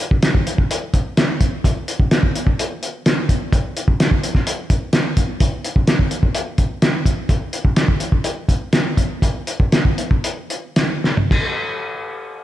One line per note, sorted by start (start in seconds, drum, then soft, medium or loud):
0.11 kick medium
0.23 snare loud
0.23 closed hi-hat medium
0.35 kick medium
0.47 closed hi-hat medium
0.58 kick medium
0.71 closed hi-hat medium
0.94 kick medium
0.94 closed hi-hat medium
1.17 snare loud
1.17 closed hi-hat medium
1.41 kick medium
1.41 closed hi-hat medium
1.64 kick loud
1.64 closed hi-hat medium
1.88 closed hi-hat medium
2.00 kick medium
2.11 snare loud
2.11 closed hi-hat medium
2.23 kick medium
2.36 closed hi-hat medium
2.47 kick medium
2.59 closed hi-hat medium
2.83 closed hi-hat medium
3.06 snare loud
3.06 closed hi-hat medium
3.29 kick medium
3.29 closed hi-hat medium
3.53 kick loud
3.53 closed hi-hat medium
3.77 closed hi-hat medium
3.88 kick medium
4.00 snare loud
4.00 closed hi-hat medium
4.11 kick medium
4.24 closed hi-hat medium
4.35 kick medium
4.35 snare soft
4.47 closed hi-hat medium
4.70 kick medium
4.70 closed hi-hat medium
4.93 snare loud
4.93 closed hi-hat medium
5.17 kick medium
5.17 closed hi-hat medium
5.40 kick loud
5.40 closed hi-hat medium
5.65 closed hi-hat medium
5.76 kick medium
5.87 snare loud
5.87 closed hi-hat medium
5.99 kick medium
6.11 closed hi-hat medium
6.23 kick medium
6.35 closed hi-hat medium
6.58 kick medium
6.58 closed hi-hat medium
6.82 snare loud
6.82 closed hi-hat medium
7.06 kick medium
7.06 closed hi-hat medium
7.29 kick loud
7.29 closed hi-hat medium
7.53 closed hi-hat medium
7.65 kick medium
7.76 snare loud
7.76 closed hi-hat medium
7.88 kick medium
8.00 closed hi-hat medium
8.12 kick medium
8.24 closed hi-hat medium
8.49 kick medium
8.49 closed hi-hat medium
8.73 snare loud
8.73 closed hi-hat medium
8.97 kick medium
8.97 closed hi-hat medium
9.22 kick loud
9.22 closed hi-hat medium
9.47 closed hi-hat medium
9.60 kick medium
9.72 snare loud
9.72 closed hi-hat medium
9.85 kick medium
9.98 closed hi-hat medium
10.11 kick medium
10.24 closed hi-hat medium
10.50 closed hi-hat medium
10.76 snare loud
10.76 closed hi-hat medium
11.04 snare medium
11.17 floor tom medium
11.31 kick medium
11.31 crash medium